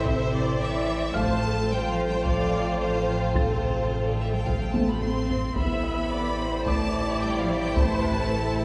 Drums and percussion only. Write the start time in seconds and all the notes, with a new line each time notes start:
0.06 taiko
1.16 taiko
2.26 taiko
3.36 taiko
4.46 taiko
4.74 taiko high
5.01 taiko high
5.29 taiko low
5.57 taiko
6.66 taiko
7.76 taiko
8.04 taiko low